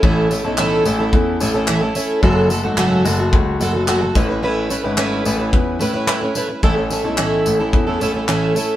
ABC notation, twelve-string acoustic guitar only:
X:1
M:4/4
L:1/16
Q:1/4=109
K:A
V:1 name="Twelve-string acoustic guitar"
[A,,E,A,CEA]2 [A,CEA] [A,CEA] [A,,E,A,CEA]2 [A,CEA] [A,CEA]3 [A,CEA] [A,CEA] [A,,E,A,CEA] [A,CEA] [A,CEA]2 | [F,,C,F,A,FA]2 [F,A,FA] [F,A,FA] [F,,C,F,A,FA]2 [F,A,FA] [F,A,FA]3 [F,A,FA] [F,A,FA] [F,,C,F,A,FA] [F,A,FA] [A,CEB] [CEB] | [A,CEB]2 [A,CEB] [CEB] [A,CEB]2 [A,CEB] [CEB]3 [A,CEB] [CEB] [A,CEB] [CEB] [A,CEB] [CEB] | [A,,E,A,CEA] [A,CEA] [A,CEA] [A,CEA] [A,,E,A,CEA]3 [A,CEA]2 [A,CEA] [A,CEA] [A,CEA] [A,,E,A,CEA]2 [A,CEA]2 |]